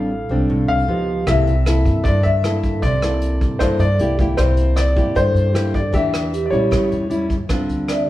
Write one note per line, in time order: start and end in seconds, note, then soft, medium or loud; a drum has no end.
0.00 0.25 A1 medium
0.00 0.47 A2 soft
0.00 0.10 G3 soft
0.00 0.10 C4 medium
0.00 0.11 D4 medium
0.00 0.31 A4 soft
0.00 0.67 F5 medium
0.29 0.48 C2 medium
0.29 0.85 G3 medium
0.29 0.86 C4 medium
0.29 0.86 D4 medium
0.49 0.67 C2 medium
0.49 0.87 A2 soft
0.68 0.86 C2 medium
0.68 1.29 F5 medium
0.88 1.24 F3 soft
0.88 1.24 B3 medium
0.88 1.25 D#4 medium
0.88 1.43 G4 soft
1.27 1.82 C2 loud
1.27 2.03 C3 medium
1.27 1.53 A#3 medium
1.27 1.53 E4 medium
1.27 1.53 A4 medium
1.27 2.07 E5 medium
1.27 kick medium
1.27 cross-stick medium
1.27 closed hi-hat soft
1.47 closed hi-hat soft
1.66 2.19 A#3 soft
1.66 2.19 E4 medium
1.66 2.19 A4 medium
1.66 cross-stick medium
1.66 closed hi-hat soft
1.85 2.03 G2 medium
1.85 kick soft
1.85 closed hi-hat soft
2.04 2.23 G2 medium
2.04 2.81 G2 medium
2.04 2.24 D5 medium
2.04 kick medium
2.04 closed hi-hat soft
2.23 2.79 G2 medium
2.23 2.84 E5 medium
2.23 closed hi-hat soft
2.44 2.83 A#3 soft
2.44 2.83 E4 medium
2.44 2.83 A4 medium
2.44 cross-stick soft
2.44 closed hi-hat soft
2.64 kick medium
2.64 closed hi-hat soft
2.82 3.37 C2 loud
2.82 3.59 C3 medium
2.82 3.63 D5 medium
2.82 kick medium
2.82 closed hi-hat soft
3.02 3.58 A#3 medium
3.02 3.58 E4 soft
3.02 3.59 A4 medium
3.02 cross-stick medium
3.02 closed hi-hat soft
3.22 closed hi-hat soft
3.41 3.59 G2 medium
3.41 kick medium
3.41 closed hi-hat soft
3.59 3.78 G2 medium
3.59 3.98 G2 medium
3.59 3.87 A#3 medium
3.59 3.87 E4 medium
3.59 3.87 A4 medium
3.59 3.80 C5 medium
3.59 kick medium
3.59 cross-stick soft
3.59 closed hi-hat soft
3.79 3.98 G2 medium
3.79 4.16 D5 medium
3.79 closed hi-hat soft
3.99 4.35 C2 medium
3.99 4.16 A#3 medium
3.99 4.16 E4 medium
3.99 4.17 G4 medium
3.99 closed hi-hat soft
4.19 4.36 A#3 medium
4.19 4.36 E4 medium
4.19 4.36 G4 medium
4.19 kick medium
4.19 closed hi-hat soft
4.37 4.93 C2 medium
4.37 5.15 C3 medium
4.37 4.94 A#3 soft
4.37 4.94 E4 medium
4.37 4.95 G4 medium
4.37 4.78 C5 medium
4.37 kick medium
4.37 cross-stick soft
4.37 closed hi-hat soft
4.57 closed hi-hat soft
4.76 5.17 D5 medium
4.76 cross-stick medium
4.76 closed hi-hat soft
4.96 5.15 G2 medium
4.96 5.52 A#3 medium
4.96 5.52 E4 medium
4.96 5.52 G4 medium
4.96 kick medium
4.96 closed hi-hat soft
5.15 5.92 G2 soft
5.15 5.34 G2 medium
5.15 5.75 A4 soft
5.15 5.71 C5 medium
5.15 kick soft
5.15 closed hi-hat soft
5.34 5.89 G2 medium
5.34 closed hi-hat soft
5.54 5.79 A#3 medium
5.54 5.80 E4 soft
5.54 5.80 G4 medium
5.54 cross-stick medium
5.54 closed hi-hat soft
5.74 5.95 D5 medium
5.74 kick soft
5.74 closed hi-hat soft
5.92 6.48 E2 medium
5.92 6.52 E3 soft
5.92 6.32 A#3 soft
5.92 6.32 D4 soft
5.92 6.33 G4 medium
5.92 6.47 E5 medium
5.92 kick medium
5.92 closed hi-hat soft
6.14 cross-stick medium
6.14 closed hi-hat soft
6.33 6.87 G4 medium
6.33 closed hi-hat soft
6.46 6.53 D5 medium
6.50 6.70 A#2 medium
6.50 7.07 G3 medium
6.50 7.08 C#4 soft
6.50 7.08 E4 medium
6.50 7.25 C#5 medium
6.50 closed hi-hat soft
6.71 6.90 A1 medium
6.71 7.47 A2 medium
6.71 kick medium
6.71 cross-stick soft
6.71 closed hi-hat soft
6.92 7.46 E2 medium
6.92 closed hi-hat soft
7.10 7.36 G3 medium
7.10 7.36 C#4 medium
7.10 7.36 E4 medium
7.10 closed hi-hat soft
7.30 kick soft
7.30 closed hi-hat soft
7.49 7.59 D2 medium
7.49 8.10 D3 medium
7.49 8.05 G3 soft
7.49 8.05 C4 soft
7.49 8.05 F4 medium
7.49 kick medium
7.49 cross-stick soft
7.49 closed hi-hat soft
7.69 8.10 D2 medium
7.69 closed hi-hat soft
7.88 8.10 D5 soft
7.88 8.10 E5 medium
7.88 cross-stick medium
7.88 closed hi-hat soft